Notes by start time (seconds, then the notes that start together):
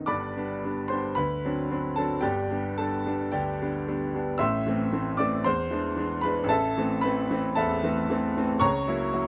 0.06 G1 G2 D5 B5 D6
0.36 G3 B3 D4
0.64 G3 B3 D4
0.88 G3 B3 D4 C5 C6
1.15 D2 B4 B5
1.45 F#3 C4 D4
1.70 F#3 C4 D4
1.96 F#3 C4 D4 A4 A5
2.21 G1 G2 G4 D5 G5
2.50 G3 B3 D4
2.78 G3 B3 D4 A4 A5
3.06 G3 B3 D4
3.32 D2 G4 D5 G5
3.62 G3 B3 D4
3.88 G3 B3 D4
4.15 G3 B3 D4
4.38 A1 A2 E5 C6 E6
4.66 E3 A3 C4
4.92 E3 A3 C4
5.17 E3 A3 C4 D5 D6
5.44 E2 C5 C6
5.70 E3 G#3 D4
5.96 E3 G#3 D4
6.21 E3 G#3 D4 B4 B5
6.44 A1
6.49 A4 E5 A5
6.78 E3 A3 C4
7.01 E3 A3 C4 B4 B5
7.30 E3 A3 C4
7.55 E2 A4 E5 A5
7.83 E3 A3 C4
8.10 E3 A3 C4
8.37 E3 A3 C4
8.60 C#2 C#5 A#5 C#6
8.87 F#3 A#3 E4
9.13 F#3 A#3 E4